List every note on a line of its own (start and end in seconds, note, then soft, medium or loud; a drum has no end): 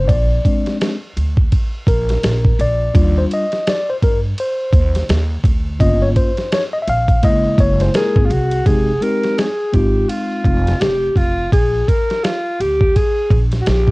0.08 0.38 A#1 loud
0.08 0.76 D5 medium
0.08 kick loud
0.08 ride medium
0.45 0.95 G#3 medium
0.45 0.95 C4 soft
0.45 0.95 D4 medium
0.45 kick medium
0.45 ride medium
0.66 snare soft
0.66 ride soft
0.81 snare loud
0.81 hi-hat pedal soft
0.81 ride medium
1.17 1.46 D2 medium
1.17 ride medium
1.37 kick loud
1.52 kick medium
1.52 ride medium
1.87 2.16 A#1 medium
1.87 2.62 A#4 medium
1.87 kick loud
1.87 ride medium
2.09 snare soft
2.09 ride soft
2.23 2.52 A#1 medium
2.23 snare loud
2.23 hi-hat pedal medium
2.23 ride medium
2.45 kick loud
2.59 2.88 A#1 medium
2.59 3.18 D5 loud
2.59 ride medium
2.94 3.24 D#2 loud
2.94 3.44 G3 medium
2.94 3.45 D4 medium
2.94 3.45 F4 medium
2.94 kick loud
2.94 ride medium
3.18 3.24 C5 medium
3.31 3.69 D#5 loud
3.31 ride medium
3.52 snare soft
3.52 ride soft
3.67 3.89 D5 loud
3.67 snare loud
3.67 hi-hat pedal medium
3.67 ride medium
3.90 3.96 C5 medium
4.03 4.31 G2 medium
4.03 4.19 A#4 medium
4.03 kick medium
4.03 ride medium
4.38 5.06 C5 medium
4.38 ride medium
4.73 5.02 D#2 loud
4.73 kick loud
4.73 ride medium
4.95 snare soft
4.95 ride medium
5.09 5.38 D#2 loud
5.09 snare loud
5.09 hi-hat pedal medium
5.09 ride medium
5.44 5.82 D2 medium
5.44 kick loud
5.44 ride medium
5.80 6.09 G1 loud
5.80 6.30 A#3 medium
5.80 6.30 C#4 medium
5.80 6.31 F4 medium
5.80 6.02 D#5 loud
5.80 kick loud
5.80 ride medium
6.02 6.09 C#5 medium
6.16 6.53 C5 medium
6.16 kick medium
6.16 ride medium
6.37 snare soft
6.37 ride soft
6.52 6.63 C#5 loud
6.52 snare loud
6.52 hi-hat pedal soft
6.52 ride medium
6.73 6.77 D#5 loud
6.82 6.88 E5 medium
6.87 7.16 A#1 medium
6.87 7.25 F5 loud
6.87 ride medium
7.08 kick loud
7.08 ride soft
7.22 7.52 F#1 medium
7.22 8.26 G#3 medium
7.22 8.26 A#3 medium
7.22 8.26 E4 medium
7.22 7.61 D#5 loud
7.22 kick loud
7.22 ride medium
7.58 7.87 F#1 loud
7.58 7.81 C#5 loud
7.58 kick loud
7.58 ride medium
7.80 7.96 C5 medium
7.80 snare soft
7.80 ride medium
7.94 8.27 G#4 medium
7.94 8.17 A#4 medium
7.94 snare loud
7.94 hi-hat pedal medium
7.94 ride medium
8.16 8.28 G#1 loud
8.16 8.63 G#4 medium
8.16 kick loud
8.25 8.33 F4 medium
8.30 8.59 C2 loud
8.30 8.68 F#4 medium
8.30 ride medium
8.51 ride soft
8.66 8.95 F1 medium
8.66 8.90 G#3 medium
8.66 8.91 C4 medium
8.66 8.91 D#4 medium
8.66 8.92 G4 medium
8.66 9.04 G#4 medium
8.66 kick loud
8.66 ride medium
9.01 9.46 G#3 medium
9.01 9.46 C4 medium
9.01 9.46 D#4 medium
9.01 9.47 G4 medium
9.01 9.40 A#4 medium
9.01 ride medium
9.24 snare soft
9.24 ride soft
9.38 9.76 G#4 medium
9.38 snare medium
9.38 hi-hat pedal soft
9.38 ride medium
9.73 10.03 G#1 medium
9.73 10.62 G#3 medium
9.73 10.62 C4 medium
9.73 10.62 D#4 medium
9.73 10.63 F4 medium
9.73 10.11 G4 medium
9.73 kick medium
9.73 ride medium
10.09 10.82 F4 medium
10.09 ride medium
10.45 10.74 F1 loud
10.45 kick medium
10.45 ride medium
10.67 snare soft
10.67 ride soft
10.80 11.10 F1 medium
10.80 11.19 G4 loud
10.80 snare loud
10.80 hi-hat pedal medium
10.80 ride medium
11.16 11.45 F1 medium
11.16 11.52 F4 medium
11.16 kick medium
11.16 ride medium
11.52 11.81 A#1 medium
11.52 11.90 G#4 medium
11.52 kick loud
11.52 ride medium
11.88 12.25 A#4 medium
11.88 kick medium
11.88 ride medium
12.10 snare soft
12.10 ride soft
12.24 12.62 F4 loud
12.24 snare loud
12.24 hi-hat pedal soft
12.24 ride medium
12.60 12.88 D2 medium
12.60 12.97 G4 loud
12.60 ride medium
12.80 kick medium
12.96 13.41 G#4 loud
12.96 kick medium
12.96 ride medium
13.30 13.59 A#1 loud
13.30 kick medium
13.30 ride medium
13.51 snare soft
13.51 ride soft
13.61 13.70 F#4 medium
13.66 13.91 A#1 medium
13.66 13.91 G4 loud
13.66 snare loud
13.66 hi-hat pedal soft
13.66 ride medium
13.88 kick loud